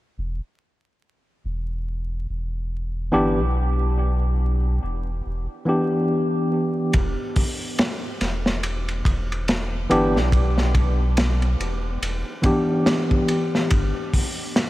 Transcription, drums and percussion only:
6.93 kick medium
6.93 ride medium
7.36 kick medium
7.36 open hi-hat medium
7.79 snare loud
7.79 ride medium
8.21 snare soft
8.21 ride medium
8.46 snare medium
8.63 ride medium
8.88 ride soft
9.05 kick medium
9.05 ride medium
9.32 ride soft
9.48 snare medium
9.48 ride medium
9.91 ride medium
10.16 snare soft
10.32 kick loud
10.32 ride medium
10.58 snare soft
10.75 kick medium
10.75 ride medium
11.17 snare loud
11.17 ride medium
11.42 ride soft
11.60 ride medium
12.03 ride medium
12.43 kick medium
12.43 ride medium
12.86 snare loud
12.86 ride medium
13.11 kick medium
13.28 ride medium
13.55 snare soft
13.71 kick medium
13.71 ride medium
14.14 kick medium
14.14 open hi-hat medium
14.56 snare loud
14.56 ride medium

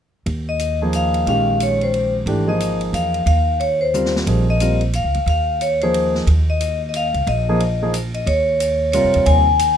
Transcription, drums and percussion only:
0.26 ride soft
0.59 hi-hat pedal medium
0.59 ride soft
0.93 hi-hat pedal soft
0.93 ride medium
1.14 ride soft
1.27 ride soft
1.60 hi-hat pedal soft
1.60 ride medium
1.81 ride soft
1.94 ride soft
2.27 ride soft
2.60 hi-hat pedal medium
2.60 ride medium
2.81 ride soft
2.94 hi-hat pedal soft
2.94 ride medium
3.14 ride soft
3.27 ride medium
3.60 ride soft
3.94 hi-hat pedal soft
3.94 mid tom soft
4.05 snare soft
4.16 snare medium
4.27 kick medium
4.27 ride medium
4.60 hi-hat pedal medium
4.60 ride medium
4.81 ride soft
4.93 hi-hat pedal medium
4.93 ride medium
5.14 ride soft
5.27 ride soft
5.61 hi-hat pedal soft
5.61 ride medium
5.81 ride soft
5.94 ride medium
6.15 snare soft
6.27 ride soft
6.60 hi-hat pedal medium
6.60 ride medium
6.94 hi-hat pedal soft
6.94 ride medium
7.14 ride soft
7.27 ride soft
7.60 ride soft
7.94 hi-hat pedal medium
7.94 ride medium
8.14 ride soft
8.27 ride medium
8.60 hi-hat pedal medium
8.60 ride medium
8.93 hi-hat pedal soft
8.93 ride medium
9.14 ride soft
9.26 ride medium
9.59 hi-hat pedal medium
9.59 ride medium

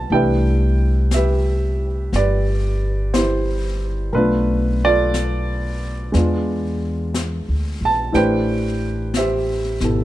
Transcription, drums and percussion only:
0.10 brush sweep soft
1.11 brush sweep soft
1.11 snare soft
1.11 hi-hat pedal medium
2.13 brush sweep soft
2.13 snare soft
3.14 brush sweep soft
3.14 snare soft
3.14 hi-hat pedal soft
4.14 brush sweep soft
5.14 brush sweep soft
5.14 snare soft
5.14 hi-hat pedal soft
6.14 brush sweep soft
6.14 snare soft
7.14 brush sweep soft
7.14 snare soft
7.14 hi-hat pedal soft
8.14 brush sweep soft
8.14 snare soft
9.14 brush sweep soft
9.14 snare soft
9.14 hi-hat pedal soft
9.80 snare soft

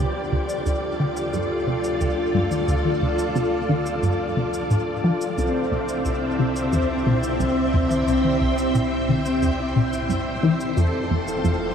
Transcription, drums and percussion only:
0.49 cabasa medium
0.66 cabasa soft
1.17 cabasa medium
1.33 cabasa soft
1.84 cabasa medium
2.01 cabasa soft
2.51 high tom medium
2.51 cabasa medium
2.68 cabasa soft
2.85 high tom medium
3.19 cabasa medium
3.36 cabasa soft
3.69 high tom medium
3.86 cabasa medium
4.03 cabasa soft
4.54 cabasa medium
4.71 cabasa soft
5.21 cabasa medium
5.38 cabasa soft
5.89 cabasa medium
6.05 cabasa soft
6.56 cabasa medium
6.73 cabasa medium
7.23 cabasa medium
7.40 cabasa soft
7.91 high tom medium
7.91 cabasa medium
8.08 cabasa soft
8.24 high tom medium
8.58 cabasa medium
8.75 cabasa soft
9.09 high tom medium
9.26 cabasa medium
9.42 cabasa soft
9.93 cabasa medium
10.10 cabasa soft
10.60 cabasa medium
10.77 cabasa soft
11.28 cabasa medium
11.45 cabasa soft

